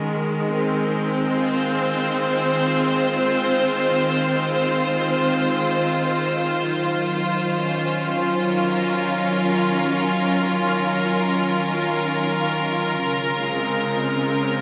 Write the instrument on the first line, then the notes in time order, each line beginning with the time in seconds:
string section
Already playing: D#3 G#3 A#4
0.51 C4
1.28 C5
1.40 F4
6.54 F#3
7.61 C#4
8.48 A#4
13.03 C#3
13.38 G#3 C4